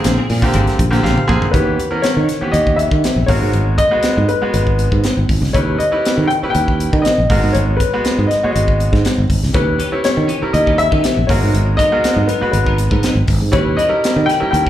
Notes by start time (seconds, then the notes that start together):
Already playing: D3 A#3 C4 G#4
0.04 A#1, muted clean electric guitar stroke, snare, closed hi-hat
0.17 C4 D4 G#4
0.29 A#2 F3 C4 D4 G#4, open hi-hat
0.42 D3 A#3 C4 G4, muted clean electric guitar stroke, kick
0.54 G#1 F3 C4 D4 G#4, closed hi-hat
0.66 muted clean electric guitar stroke, snare, closed hi-hat
0.78 A#1, muted clean electric guitar stroke, kick, closed hi-hat
0.90 D3 A#3 C4 G4, snare, closed hi-hat
1.02 A#1 F3 C4 D4 G#4 F5, snare
1.15 muted clean electric guitar stroke, mid tom
1.27 A#1 D3 A#3 C4 G#4 C6, muted clean electric guitar stroke, kick
1.42 muted fretless electric bass stroke, floor tom
1.51 D#2 E3 B3 C#4 G4 B4, kick, closed hi-hat
1.80 closed hi-hat
1.90 E3 B3 C#4 A#4
2.02 C#5, snare, closed hi-hat
2.17 D#3
2.29 snare, closed hi-hat
2.41 E3 B3 C#4 G4, muted fretless electric bass stroke
2.52 D#2 D#5, closed hi-hat
2.67 kick
2.76 E5, closed hi-hat
2.91 D#3, kick
3.04 snare, closed hi-hat
3.16 A#1
3.26 G#1 G#3 B3 F#4 A#4 C#5, kick, open hi-hat
3.42 G#2
3.53 G#1, closed hi-hat
3.78 D#5, kick, closed hi-hat
3.91 G#3 B3 F#4 B4
4.03 snare, closed hi-hat
4.17 G#2
4.28 B4, closed hi-hat
4.42 G#3 B3 F#4 B4, muted fretless electric bass stroke
4.54 G#1 B4, closed hi-hat
4.67 kick
4.79 closed hi-hat
4.92 G#2, kick
5.04 snare, closed hi-hat
5.17 G#1
5.29 G#1, kick, open hi-hat
5.42 C#2, snare
5.53 D#2 G3 C#4 E4 B4 C#5, kick, closed hi-hat
5.78 D#5, closed hi-hat
5.92 G3 C#4 E4 B4
6.05 snare, closed hi-hat
6.18 D#3
6.27 G5, closed hi-hat
6.43 G3 C#4 E4 B4, muted fretless electric bass stroke
6.50 G5
6.55 D#2, closed hi-hat
6.68 kick
6.80 closed hi-hat
6.93 D#3, kick
7.02 D#5, closed hi-hat
7.06 snare
7.18 A#1
7.30 G#1 G#3 B3 F#4 A#4, kick, open hi-hat
7.43 G#2
7.53 G#1 C#5, closed hi-hat
7.77 B4, kick, closed hi-hat
7.93 G#3 B3 F#4 B4
8.05 snare, closed hi-hat
8.19 G#2
8.27 D#5
8.31 snare, closed hi-hat
8.43 G#3 B3 F#4 C#5, muted fretless electric bass stroke
8.51 D#5
8.56 G#1, closed hi-hat
8.68 kick
8.80 closed hi-hat
8.93 G#2, kick, snare
9.05 snare, closed hi-hat
9.18 G#1
9.30 G#1, kick, open hi-hat
9.43 C#2, snare
9.54 D#2 E3 G3 B3 C#4 E4 G4 B4, kick, closed hi-hat
9.67 muted clean electric guitar stroke
9.79 E3 B3 C#4 G4, closed hi-hat
9.92 G3 C#4 E4 C#5, muted clean electric guitar stroke
10.04 C#5, snare, closed hi-hat
10.17 D#3, muted clean electric guitar stroke
10.27 E3 B3 C#4 G4, closed hi-hat
10.41 G3 C#4 E4 A#4, muted clean electric guitar stroke, muted fretless electric bass stroke
10.53 D#2 D#5, muted clean electric guitar stroke, closed hi-hat
10.66 E3 B3 C#4 G4, kick
10.78 E5, muted clean electric guitar stroke, closed hi-hat
10.91 D#3 B3 C#4 G4, kick
11.03 E3 B3 C#4 G4, snare, closed hi-hat
11.17 A#1, muted clean electric guitar stroke
11.27 G#1 G#3 B3 F#4 A#4 C#5, muted clean electric guitar stroke, kick, open hi-hat
11.43 G#2
11.54 G#1, closed hi-hat
11.66 muted clean electric guitar stroke
11.77 F#3 B3 D#4 A#4 D#5, kick, closed hi-hat
11.91 G#3 B3 F#4 A#4, muted clean electric guitar stroke
12.04 snare, closed hi-hat
12.16 G#2, muted clean electric guitar stroke
12.27 F#3 B3 D#4 A#4 B4, closed hi-hat
12.41 G#3 B3 F#4 B4, muted clean electric guitar stroke, muted fretless electric bass stroke
12.51 G#1 B4, muted clean electric guitar stroke, closed hi-hat
12.66 F#3 B3 D#4 A#4, kick
12.78 muted clean electric guitar stroke, closed hi-hat
12.90 G#2 B3 D#4 A#4, kick
13.03 F#3 B3 D#4 A#4, snare, closed hi-hat
13.15 G#1, muted clean electric guitar stroke
13.28 G#1, muted clean electric guitar stroke, kick, open hi-hat
13.41 G#2
13.51 D#2 G3 C#4 E4 B4 C#5, kick, closed hi-hat
13.65 muted clean electric guitar stroke
13.77 G3 C#4 E4 B4 D#5, closed hi-hat
13.89 G3 C#4 E4 A#4, muted clean electric guitar stroke
14.04 snare, closed hi-hat
14.16 D#3, muted clean electric guitar stroke
14.26 G3 C#4 E4 B4 G5, closed hi-hat
14.30 snare
14.40 G3 C#4 E4 A#4, muted clean electric guitar stroke, muted fretless electric bass stroke
14.51 D#2 G5, muted clean electric guitar stroke, closed hi-hat
14.66 C#4 E4 B4